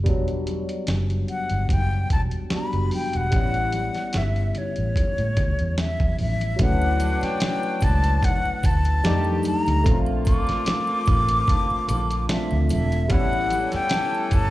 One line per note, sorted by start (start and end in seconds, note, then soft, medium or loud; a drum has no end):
0.04 0.61 E1 medium
0.04 2.46 G3 medium
0.04 2.47 B3 medium
0.04 2.48 D4 medium
0.04 kick loud
0.04 closed hi-hat medium
0.04 muted conga soft
0.09 2.49 F#3 medium
0.28 closed hi-hat soft
0.47 closed hi-hat medium
0.47 muted conga soft
0.69 closed hi-hat medium
0.87 1.24 F#1 medium
0.87 snare loud
0.87 closed hi-hat medium
0.87 high conga medium
1.10 closed hi-hat soft
1.28 1.67 F#5 medium
1.28 closed hi-hat medium
1.50 1.67 G1 medium
1.50 closed hi-hat medium
1.69 2.05 F#1 medium
1.69 2.09 G5 loud
1.69 kick medium
1.69 closed hi-hat medium
1.69 muted conga soft
1.69 low conga medium
2.10 2.30 E1 medium
2.10 2.21 A5 medium
2.10 kick medium
2.10 closed hi-hat medium
2.10 muted conga soft
2.31 closed hi-hat medium
2.49 3.29 G3 soft
2.49 3.31 B3 soft
2.49 3.33 D4 soft
2.49 3.33 F#4 medium
2.49 muted fingered electric bass stroke soft
2.49 snare medium
2.49 closed hi-hat medium
2.49 high conga medium
2.54 2.91 B5 medium
2.73 2.90 F#1 medium
2.73 closed hi-hat soft
2.91 3.18 G5 medium
2.91 open hi-hat medium
2.91 high conga medium
3.13 3.31 E1 medium
3.13 4.19 F#5 loud
3.13 closed hi-hat soft
3.31 3.88 A1 medium
3.31 6.54 G3 medium
3.31 6.55 B3 medium
3.31 6.56 C#4 medium
3.31 kick loud
3.31 closed hi-hat medium
3.36 6.57 E4 medium
3.54 closed hi-hat soft
3.73 closed hi-hat medium
3.73 muted conga soft
3.95 snare soft
3.95 closed hi-hat soft
4.13 4.51 G1 medium
4.13 snare loud
4.13 closed hi-hat medium
4.13 high conga medium
4.18 4.59 E5 medium
4.36 closed hi-hat soft
4.55 5.79 C#5 medium
4.55 closed hi-hat medium
4.55 low conga medium
4.76 4.94 A1 medium
4.76 closed hi-hat medium
4.96 kick medium
4.96 closed hi-hat medium
4.96 muted conga soft
4.96 low conga medium
5.18 5.35 A2 medium
5.18 closed hi-hat soft
5.37 5.57 D2 medium
5.37 kick medium
5.37 closed hi-hat medium
5.37 muted conga soft
5.37 low conga medium
5.59 5.95 E2 medium
5.59 closed hi-hat medium
5.78 6.17 E5 medium
5.78 snare loud
5.78 closed hi-hat medium
5.78 high conga medium
6.00 6.17 E2 medium
6.00 kick medium
6.00 closed hi-hat soft
6.00 high conga soft
6.19 6.55 A1 medium
6.19 6.58 E5 medium
6.19 open hi-hat medium
6.19 high conga medium
6.41 closed hi-hat medium
6.56 7.15 D2 loud
6.56 8.59 D3 medium
6.56 8.98 F#3 medium
6.56 8.59 F#3 medium
6.56 8.99 A3 medium
6.56 9.00 C#4 medium
6.56 8.59 C#4 medium
6.56 8.59 D4 medium
6.56 9.40 B4 medium
6.56 kick loud
6.56 closed hi-hat medium
6.56 muted conga soft
6.56 muted triangle soft
6.61 9.01 E4 medium
6.61 7.25 F#5 loud
6.82 muted triangle medium
7.00 closed hi-hat medium
7.00 muted conga soft
7.00 triangle medium
7.21 7.86 G5 loud
7.21 muted fingered electric bass stroke soft
7.21 snare soft
7.21 closed hi-hat medium
7.21 muted triangle soft
7.40 snare loud
7.40 closed hi-hat loud
7.40 high conga medium
7.40 muted triangle soft
7.63 muted triangle soft
7.81 8.18 C#2 medium
7.81 8.26 A5 medium
7.81 kick medium
7.81 closed hi-hat medium
7.81 triangle medium
8.04 closed hi-hat medium
8.04 muted triangle soft
8.23 8.67 F#5 loud
8.23 kick medium
8.23 closed hi-hat loud
8.23 muted conga medium
8.23 low conga medium
8.23 muted triangle medium
8.45 muted fingered electric bass stroke soft
8.45 muted triangle soft
8.63 9.00 D2 medium
8.63 9.46 A5 medium
8.63 kick loud
8.63 closed hi-hat medium
8.63 muted conga medium
8.63 triangle medium
8.85 closed hi-hat medium
8.85 muted triangle soft
9.03 9.40 F2 loud
9.03 9.44 D#3 medium
9.03 9.85 G3 medium
9.03 9.44 G3 medium
9.03 9.82 A3 medium
9.03 9.44 D4 medium
9.03 9.86 D4 medium
9.03 9.86 D#4 medium
9.03 9.44 G4 medium
9.03 snare loud
9.03 closed hi-hat medium
9.03 high conga medium
9.03 muted triangle soft
9.25 high conga soft
9.25 muted triangle soft
9.43 9.97 A#5 loud
9.43 closed hi-hat medium
9.43 high conga medium
9.43 triangle medium
9.66 9.84 D2 medium
9.66 closed hi-hat medium
9.66 muted triangle soft
9.84 10.41 A#1 loud
9.84 12.66 D3 medium
9.84 12.66 F3 medium
9.84 12.24 A3 medium
9.84 12.66 A#3 medium
9.84 12.25 C4 medium
9.84 9.93 C#4 soft
9.84 12.66 F4 medium
9.84 kick loud
9.84 closed hi-hat medium
9.84 muted conga soft
9.84 muted triangle soft
9.89 12.27 F4 medium
9.93 12.29 D4 medium
10.06 muted triangle medium
10.25 12.26 D6 loud
10.25 kick medium
10.25 closed hi-hat medium
10.25 muted conga medium
10.25 triangle medium
10.47 muted fingered electric bass stroke medium
10.47 snare soft
10.47 closed hi-hat medium
10.47 muted triangle soft
10.66 snare loud
10.66 closed hi-hat loud
10.66 high conga medium
10.66 muted triangle medium
10.87 muted triangle soft
11.06 11.43 A1 medium
11.06 kick loud
11.06 closed hi-hat medium
11.06 low conga medium
11.06 triangle medium
11.28 closed hi-hat medium
11.28 muted triangle soft
11.47 13.47 A5 medium
11.47 kick medium
11.47 closed hi-hat medium
11.47 muted conga medium
11.47 low conga medium
11.47 muted triangle medium
11.70 muted fingered electric bass stroke medium
11.70 muted triangle soft
11.88 12.25 A#1 medium
11.88 closed hi-hat medium
11.88 muted conga medium
11.88 low conga medium
11.88 triangle medium
12.11 closed hi-hat medium
12.11 muted triangle soft
12.28 13.10 A3 soft
12.28 13.10 C4 soft
12.28 13.11 D4 soft
12.28 13.11 F4 medium
12.28 12.68 E5 medium
12.28 snare loud
12.28 closed hi-hat medium
12.28 high conga medium
12.28 muted triangle soft
12.51 12.68 D2 medium
12.51 high conga medium
12.51 muted triangle medium
12.69 13.10 E1 loud
12.69 13.13 E5 loud
12.69 closed hi-hat medium
12.69 high conga medium
12.69 triangle medium
12.92 closed hi-hat soft
12.92 muted triangle soft
13.08 13.65 A1 loud
13.08 14.50 E3 medium
13.08 14.50 G3 medium
13.08 14.50 A3 medium
13.08 14.50 B3 medium
13.08 14.50 C#4 medium
13.08 14.50 A4 medium
13.08 13.74 F#5 loud
13.08 14.50 B5 medium
13.08 kick loud
13.08 closed hi-hat loud
13.08 muted triangle soft
13.12 14.50 C#4 medium
13.12 14.50 E4 medium
13.33 muted triangle medium
13.50 closed hi-hat medium
13.50 muted conga medium
13.50 triangle medium
13.72 14.36 G5 loud
13.72 muted fingered electric bass stroke medium
13.72 snare soft
13.72 closed hi-hat medium
13.72 muted triangle soft
13.89 14.50 A5 medium
13.89 snare loud
13.89 closed hi-hat loud
13.89 high conga medium
13.94 muted triangle medium
14.15 muted triangle soft
14.31 14.50 G1 loud
14.31 14.50 A5 medium
14.31 kick loud
14.31 closed hi-hat medium
14.31 triangle medium